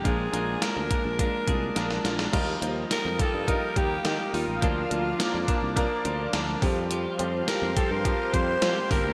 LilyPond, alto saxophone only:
\new Staff \with { instrumentName = "Alto saxophone" } { \time 4/4 \key c \minor \tempo 4 = 105 aes'4 bes'4 bes'4. r8 | \key f \mixolydian r4 bes'8 a'8 bes'8 g'8 g'8 f'8~ | f'2~ f'8 r4. | r4 bes'8 a'16 bes'8. c''4 bes'8 | }